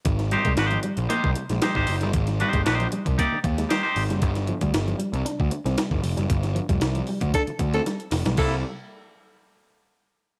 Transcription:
0.05 G#1, kick, closed hi-hat
0.19 muted clean electric guitar stroke, snare, closed hi-hat
0.31 G3 D#4 G4 C5, closed hi-hat
0.45 C2 G#3, kick, closed hi-hat
0.57 G#1 D#4 G4 C5, muted clean electric guitar stroke, snare, closed hi-hat
0.71 F3, closed hi-hat
0.83 G3, closed hi-hat
0.97 A#1, closed hi-hat
1.09 A#3 D#4 G4 C5, snare, closed hi-hat
1.24 C2, kick
1.35 muted clean electric guitar stroke, closed hi-hat
1.49 A#1 G#3, snare, closed hi-hat
1.62 G3 D#4 G4 C5, snare, closed hi-hat
1.75 G#1 D#4 G4 C5, kick
1.87 F#1, muted clean electric guitar stroke, open hi-hat
2.01 G1 G3, snare, closed hi-hat
2.13 G#1, kick, closed hi-hat
2.27 muted clean electric guitar stroke, snare, closed hi-hat
2.40 G3 D#4 G4 C5, closed hi-hat
2.53 G1 G#3, kick, closed hi-hat
2.65 A#1 D#4 G4 C5, muted clean electric guitar stroke, snare, closed hi-hat
2.80 F3, closed hi-hat
2.92 G3, closed hi-hat
3.06 C2, kick, closed hi-hat
3.18 A#3 D#4 G4 D5, kick, snare, closed hi-hat
3.32 muted picked electric bass stroke
3.44 D#2, muted clean electric guitar stroke, kick, closed hi-hat
3.58 G#3, snare, closed hi-hat
3.69 G3 D#4 G4 C5, snare, closed hi-hat
3.83 D#4 G4 C5
3.96 G#1, muted clean electric guitar stroke, open hi-hat
4.09 F#1 G3, snare, closed hi-hat
4.22 G1, kick, closed hi-hat
4.35 muted clean electric guitar stroke, snare, closed hi-hat
4.47 F3, closed hi-hat
4.61 D2 G3, kick, closed hi-hat
4.74 G1, muted clean electric guitar stroke, snare, closed hi-hat
4.88 F3, closed hi-hat
4.99 G3, closed hi-hat
5.13 C2, closed hi-hat
5.25 D4, snare, closed hi-hat
5.40 D2, kick
5.51 muted clean electric guitar stroke, closed hi-hat
5.65 C2 C4, snare, closed hi-hat
5.78 G3, snare, closed hi-hat
5.91 G1, kick
6.04 F1, muted clean electric guitar stroke, open hi-hat
6.17 F#1 G3, snare, closed hi-hat
6.30 G1, kick, closed hi-hat
6.43 muted clean electric guitar stroke, snare, closed hi-hat
6.55 F3, closed hi-hat
6.69 F1 G3, kick, closed hi-hat
6.81 C2, muted clean electric guitar stroke, snare, closed hi-hat
6.95 F3, closed hi-hat
7.07 G3, open hi-hat
7.21 D2, kick, closed hi-hat
7.34 D4 A4, kick, snare, closed hi-hat
7.47 muted picked electric bass stroke, closed hi-hat
7.59 D2, muted clean electric guitar stroke, kick, closed hi-hat
7.74 C4 A4, snare, closed hi-hat
7.86 G3, snare, closed hi-hat
8.00 closed hi-hat
8.11 F1, muted clean electric guitar stroke, snare, open hi-hat
8.25 B1 G3, snare, closed hi-hat
8.37 C2 G3 A#3 E4 A4, kick, crash

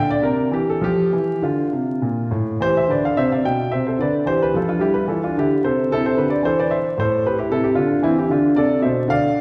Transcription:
Already playing: D3
0.10 D5
0.22 C3 A#4
0.51 E3 G4
0.70 A4
0.81 F3 G4
1.13 E3
1.42 D3 F4
1.73 C3
2.02 A#2
2.31 A2
2.60 E3 G4 C5
2.77 C5 E5
2.88 D3 B4 D5
3.05 D5 F5
3.16 C3 C5 E5
3.32 D5 F5
3.44 B2 E5 G5
3.71 C3 C5 E5
3.87 A4 C5
3.99 D3 B4 D5
4.26 E3 G4 C5
4.43 G4 B4
4.54 F3 F4 A4
4.69 D4 F4
4.79 G3 E4 G4
4.94 G4 B4
5.08 E3 F4 A4
5.24 D4 F4
5.37 D3 E4 G4
5.64 C3 A4 C5
5.91 C3 E4 A4
6.06 A4 C5
6.17 D3 G4 B4
6.30 B4 D5
6.43 E3 A4 C5
6.59 B4 D5
6.71 C5 E5
6.98 A2 A4 C5
7.26 G4 B4
7.39 E4 G4
7.50 C3 E4 A4
7.64 E4 G4
7.75 D3 D4 F4
8.02 E3 C4 E4
8.18 E4 G4
8.29 D3 D4 F4
8.55 C3 A4 D5
8.82 B2 C5 E5
9.08 D3 D5 F5

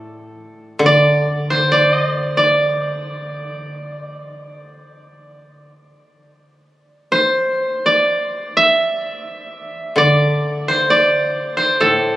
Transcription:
Already playing: A2
0.79 D3
0.86 D5
1.50 C5
1.72 D5
2.37 D5
4.04 D#5
4.50 D5
4.99 D#5
5.45 D5
7.12 C5
7.86 D5
8.57 E5
9.96 D3 D5
10.68 C5
10.90 D5
11.57 C5
11.80 A2 A4

